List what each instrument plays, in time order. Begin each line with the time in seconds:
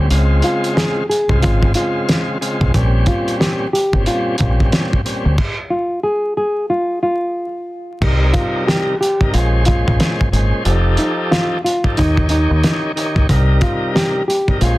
0.10 fingered electric bass C#2, tonewheel organ C#3 G#3 C4 F4, closed hi-hat
0.42 nylon-string guitar F4, closed hi-hat
0.64 closed hi-hat
0.77 nylon-string guitar G#4, snare, closed hi-hat
1.09 nylon-string guitar G#4, closed hi-hat
1.29 fingered electric bass C2, tonewheel organ C#3 G#3 C4 F4, kick
1.42 fingered electric bass G#1, nylon-string guitar F4, kick, closed hi-hat
1.63 kick
1.74 tonewheel organ C#3 G#3 C4 F4, nylon-string guitar F4, closed hi-hat
2.09 snare, closed hi-hat
2.41 tonewheel organ C#3 G#3 C4 F4, closed hi-hat
2.61 fingered electric bass B1, kick
2.74 fingered electric bass A#1, tonewheel organ A#2 G3 C4 C#4, kick, closed hi-hat
3.06 nylon-string guitar F4, kick, closed hi-hat
3.28 closed hi-hat
3.40 nylon-string guitar G4, snare, closed hi-hat
3.73 nylon-string guitar G4, closed hi-hat
3.93 fingered electric bass G1, tonewheel organ A#2 G3 C4 C#4, kick
4.06 nylon-string guitar F4, closed hi-hat
4.38 fingered electric bass A#1, tonewheel organ A#2 G3 C4 C#4, nylon-string guitar F4, kick, closed hi-hat
4.60 kick
4.72 snare, closed hi-hat
4.93 kick
5.05 tonewheel organ A#2 G3 C4 C#4, closed hi-hat
5.25 fingered electric bass D2
5.38 kick, crash
5.70 nylon-string guitar F4
6.03 nylon-string guitar G#4
6.37 nylon-string guitar G#4
6.70 nylon-string guitar F4
7.03 nylon-string guitar F4
8.01 fingered electric bass C2, tonewheel organ C3 G3 D#4 A#4, kick, crash
8.33 nylon-string guitar F4, kick, closed hi-hat
8.67 nylon-string guitar G4, snare, closed hi-hat
9.01 nylon-string guitar G4, closed hi-hat
9.21 tonewheel organ C3 G3 D#4 A#4, kick
9.33 fingered electric bass A#1, tonewheel organ A#2 G#3 C#4 C5, nylon-string guitar F4, closed hi-hat
9.65 tonewheel organ A#2 G#3 C#4 C5, nylon-string guitar F4, kick, closed hi-hat
9.88 fingered electric bass A#1, kick
10.00 snare, closed hi-hat
10.21 kick
10.32 fingered electric bass G#1, tonewheel organ A#2 G#3 C#4 C5, closed hi-hat
10.64 fingered electric bass F1, tonewheel organ F3 D#4 G4 A4, closed hi-hat
10.97 nylon-string guitar D#4, closed hi-hat
11.31 nylon-string guitar F4, snare, closed hi-hat
11.64 nylon-string guitar F4, closed hi-hat
11.84 tonewheel organ F3 D#4 G4 A4, kick
11.97 fingered electric bass D#2, tonewheel organ D#3 D#4 G4 C#5, nylon-string guitar D#4, kick, closed hi-hat
12.17 kick
12.29 tonewheel organ D#3 D#4 G4 C#5, nylon-string guitar D#4, closed hi-hat
12.51 fingered electric bass D#2
12.63 snare, closed hi-hat
12.96 tonewheel organ D#3 D#4 G4 C#5, closed hi-hat
13.16 fingered electric bass C#2, kick
13.29 fingered electric bass C2, tonewheel organ C3 G3 D#4 A#4, kick, closed hi-hat
13.61 nylon-string guitar F4, kick, closed hi-hat
13.95 nylon-string guitar G4, snare, closed hi-hat
14.28 nylon-string guitar G4, closed hi-hat
14.48 tonewheel organ C3 G3 D#4 A#4, kick
14.61 fingered electric bass A#1, tonewheel organ A#2 G#3 C#4 C5, nylon-string guitar F4, closed hi-hat